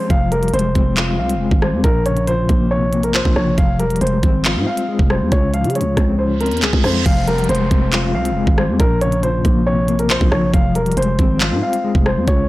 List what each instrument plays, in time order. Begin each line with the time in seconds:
Already playing: clean electric guitar G#3 C4
0.10 808-style bass F1, clean electric guitar F3, grand piano F5, kick, closed hi-hat
0.32 clean electric guitar G3, grand piano A#4, closed hi-hat
0.43 closed hi-hat
0.48 closed hi-hat
0.53 808-style bass F1, clean electric guitar G#3, grand piano C5, closed hi-hat
0.59 closed hi-hat
0.75 808-style bass F1, clean electric guitar C4, kick, closed hi-hat
0.97 clean electric guitar F4, clap, closed hi-hat
1.19 808-style bass C2, clean electric guitar C4, grand piano F5
1.29 closed hi-hat
1.35 808-style bass F1
1.40 clean electric guitar G#3
1.51 808-style bass G#1, kick
1.62 clean electric guitar G3, grand piano C5, cross-stick
1.73 808-style bass F2
1.83 808-style bass A#1, clean electric guitar A#2, grand piano A#4, kick, closed hi-hat
2.06 clean electric guitar C#3, grand piano C#5, closed hi-hat
2.17 closed hi-hat
2.27 clean electric guitar F3, grand piano C5, closed hi-hat
2.49 808-style bass A#1, clean electric guitar A#3, kick, closed hi-hat
2.71 clean electric guitar C3, grand piano C#5
2.93 clean electric guitar A#3, closed hi-hat
3.03 grand piano A#4, closed hi-hat
3.14 clean electric guitar F3, grand piano C5, clap, closed hi-hat
3.25 808-style bass A#1, kick
3.36 808-style bass A#1, clean electric guitar C#3, grand piano C#5, cross-stick
3.58 808-style bass F1, clean electric guitar F3, grand piano F5, kick, closed hi-hat
3.79 808-style bass E1, clean electric guitar G3, grand piano A#4, closed hi-hat
3.90 808-style bass F1, closed hi-hat
3.96 closed hi-hat
4.01 808-style bass F1, clean electric guitar G#3, grand piano C5, closed hi-hat
4.07 closed hi-hat
4.23 808-style bass G#1, clean electric guitar C4, kick, closed hi-hat
4.45 clean electric guitar F4, clap, closed hi-hat
4.56 808-style bass G#2
4.66 clean electric guitar C4, grand piano F5
4.77 closed hi-hat
4.88 clean electric guitar G#3
4.99 808-style bass F1, kick
5.10 clean electric guitar G3, grand piano C5, cross-stick
5.21 808-style bass F2
5.32 808-style bass C#2, clean electric guitar C#3, grand piano C#5, kick, closed hi-hat
5.53 clean electric guitar F3, grand piano F5, closed hi-hat
5.64 808-style bass C#3, closed hi-hat
5.70 closed hi-hat
5.75 clean electric guitar G#3, grand piano C#5, closed hi-hat
5.81 808-style bass C#2, closed hi-hat
5.97 808-style bass C#2, clean electric guitar C4, kick, cross-stick, closed hi-hat
6.19 clean electric guitar C#4, grand piano C5, reverse cymbal
6.41 clean electric guitar C4, grand piano A#4, closed hi-hat
6.46 closed hi-hat
6.51 808-style bass E2, closed hi-hat
6.57 closed hi-hat
6.62 808-style bass C#2, clean electric guitar G#3, grand piano G#4, clap, closed hi-hat
6.73 808-style bass C#2, kick
6.84 808-style bass F2, clean electric guitar F3, grand piano C5, cross-stick, open hi-hat
7.06 808-style bass F1, clean electric guitar F3, grand piano F5, kick, closed hi-hat, crash, downlifter
7.27 clean electric guitar G3, grand piano A#4, closed hi-hat
7.38 closed hi-hat
7.44 closed hi-hat
7.49 808-style bass F1, clean electric guitar G#3, grand piano C5, closed hi-hat
7.55 closed hi-hat
7.71 808-style bass F1, clean electric guitar C4, kick, closed hi-hat
7.93 clean electric guitar F4, clap, closed hi-hat
8.14 808-style bass C2, clean electric guitar C4, grand piano F5
8.25 closed hi-hat
8.31 808-style bass F1
8.36 clean electric guitar G#3
8.47 808-style bass G#1, kick
8.58 clean electric guitar G3, grand piano C5, cross-stick
8.69 808-style bass F2
8.79 808-style bass A#1, clean electric guitar A#2, grand piano A#4, kick, closed hi-hat
9.01 clean electric guitar C#3, grand piano C#5, closed hi-hat
9.12 closed hi-hat
9.23 clean electric guitar F3, grand piano C5, closed hi-hat
9.45 808-style bass A#1, clean electric guitar A#3, kick, closed hi-hat
9.67 clean electric guitar C3, grand piano C#5
9.88 clean electric guitar A#3, closed hi-hat
9.99 grand piano A#4, closed hi-hat
10.09 clean electric guitar F3, grand piano C5, clap, closed hi-hat
10.21 808-style bass A#1, kick
10.31 808-style bass A#1, clean electric guitar C#3, grand piano C#5, cross-stick
10.54 808-style bass F1, clean electric guitar F3, grand piano F5, kick, closed hi-hat
10.75 808-style bass E1, clean electric guitar G3, grand piano A#4, closed hi-hat
10.86 808-style bass F1, closed hi-hat
10.92 closed hi-hat
10.97 808-style bass F1, clean electric guitar G#3, grand piano C5, closed hi-hat
11.02 closed hi-hat
11.19 808-style bass G#1, clean electric guitar C4, kick, closed hi-hat
11.40 clean electric guitar F4, clap, closed hi-hat
11.51 808-style bass G#2
11.62 clean electric guitar C4, grand piano F5
11.73 closed hi-hat
11.84 clean electric guitar G#3
11.95 808-style bass F1, kick
12.06 clean electric guitar G3, grand piano C5, cross-stick
12.17 808-style bass F2
12.27 808-style bass C#2, clean electric guitar C#3, grand piano C#5, kick, closed hi-hat